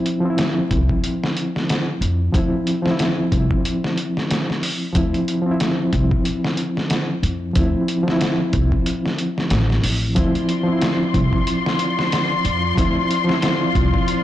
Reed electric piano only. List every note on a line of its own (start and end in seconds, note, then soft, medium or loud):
0.00 0.19 F3 medium
0.00 0.20 C4 medium
0.00 0.21 E4 medium
0.21 2.29 F3 medium
0.25 2.31 C4 medium
0.30 2.33 E4 medium
2.32 2.80 F3 medium
2.32 2.81 C4 medium
2.37 2.82 E4 medium
2.82 4.90 F3 medium
2.87 4.92 C4 medium
2.91 4.94 E4 medium
4.93 5.40 F3 medium
4.93 5.42 C4 medium
4.97 5.43 E4 medium
5.42 7.50 F3 medium
5.46 7.52 C4 medium
5.51 7.55 E4 medium
7.53 8.01 F3 medium
7.53 8.02 C4 medium
7.58 8.03 E4 medium
8.03 10.11 F3 medium
8.07 10.13 C4 medium
8.12 10.15 E4 medium
10.15 10.62 F3 medium
10.15 10.63 C4 medium
10.20 10.65 E4 medium
10.63 12.72 F3 medium
10.68 12.74 C4 medium
10.73 12.76 E4 medium
12.75 13.23 F3 medium
12.75 13.24 C4 medium
12.80 13.25 E4 medium
13.24 14.23 F3 medium
13.29 14.23 C4 medium
13.33 14.23 E4 medium